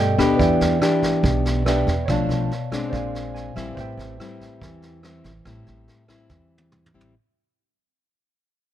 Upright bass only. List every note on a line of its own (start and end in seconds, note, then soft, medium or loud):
0.00 0.14 G2 medium
0.18 0.38 D#2 medium
0.39 0.59 E2 medium
0.61 0.80 E2 medium
1.23 1.83 B1 medium
1.87 2.07 E2 medium
2.08 2.28 B1 medium
2.29 2.49 B1 medium
2.93 3.52 A#1 medium
3.56 3.76 A#1 medium
3.77 3.97 A1 medium
3.97 4.18 A1 medium
4.62 5.21 E2 medium
5.24 5.44 A1 medium
5.45 5.65 A1 medium
5.67 5.87 A1 medium
6.30 6.90 E2 medium
6.94 7.14 A1 medium